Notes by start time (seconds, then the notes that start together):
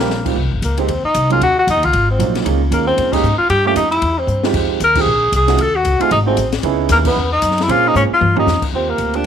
Already playing: A#1 A#3
0.00 G4
0.10 snare
0.25 G#2 G3 A#3 C4 F4, kick, crash
0.36 C2
0.45 G#1
0.52 G1, kick
0.62 C#2 A#3, kick, hi-hat pedal, ride
0.77 G#3 A#3 C4 D#4 G4, ride
0.88 D#2, kick, ride
1.03 D#4, muted upright bass stroke
1.14 C2, kick, hi-hat pedal, ride
1.30 F#3 A#3 C#4 D#4 F4 G#4, ride
1.41 D#2 F#4, kick, ride
1.59 F#4
1.67 F2 D#4, kick, hi-hat pedal, ride
1.76 D#2
1.83 C#2 F4, ride
1.93 G#1, kick, ride
2.11 C4
2.19 A#1 F#3 A#3 C4 D#4 F4, kick, hi-hat pedal, ride
2.35 snare, ride
2.44 C#2 G#3 A#3 C#4 D#4 F4, kick, ride
2.70 D#2 G#3 A#3 C#4 D#4 F4, kick, hi-hat pedal, ride
2.87 C4
2.97 F2, kick, ride
3.12 G#3 A#3 C#4 D#4 G4, kick, crash
3.23 G#2, hi-hat pedal
3.38 F4, muted upright bass stroke
3.49 G2 G4, kick, ride
3.65 A3 A#3 C#4 F4 G4
3.75 F2 D#4, kick, hi-hat pedal, ride
3.91 E4, ride
4.02 E2, kick, ride
4.19 C4
4.27 G2, hi-hat pedal
4.43 G#3 C4 D#4 F4 G4, snare
4.53 F2, kick, crash
4.80 D#2 A#4, kick, hi-hat pedal, ride
4.95 G#3 C4 D#4 F4 G4, kick, crash
5.01 G#4
5.06 A#1
5.32 C2 G#4, kick, hi-hat pedal, ride
5.47 A3 C#4 D#4 F4 F#4, snare, ride
5.58 D#2 A4, kick, ride
5.76 F#4
5.85 C#2, kick, hi-hat pedal, ride
5.99 A3 C4 D#4 F4 F#4 G#4, muted upright bass stroke, ride
6.11 G#1 D#4, kick, ride
6.26 A3 C4 D#4 F#4 G#4
6.37 A1, kick, hi-hat pedal, ride
6.52 snare, ride
6.63 C#2 B3 C#4 D#4 E4 G#4, kick, ride
6.89 D#2 A#3, snare, hi-hat pedal, ride
7.05 B3 C#4 D#4 E4 B4, kick, crash
7.16 E2
7.32 D#4
7.42 F#2, kick, hi-hat pedal, ride
7.51 snare
7.58 snare, ride
7.62 E4
7.68 A#2 A#3 C4 C#4 F4 G#4, kick, ride
7.87 D#4
7.95 G#2 C#4, hi-hat pedal, high tom
8.11 F4, muted upright bass stroke
8.21 G2, mid tom
8.35 A#3 C#4 D#4 F4 G4, floor tom
8.46 F2, snare, hi-hat pedal
8.62 muted upright bass stroke, kick, crash
8.72 D#2 A#3 C4 F4 G4
8.90 A#3
8.98 D2, kick, hi-hat pedal, ride
9.14 A#3 C4 D4 F4 G4, ride